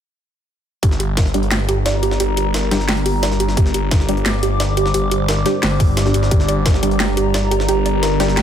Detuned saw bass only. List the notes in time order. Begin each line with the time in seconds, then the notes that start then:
0.83 G1
1.68 G1
2.20 G1
3.57 G1
4.43 G1
4.94 G1
5.63 G1
6.14 G1
6.31 G1
7.17 G1
7.68 G1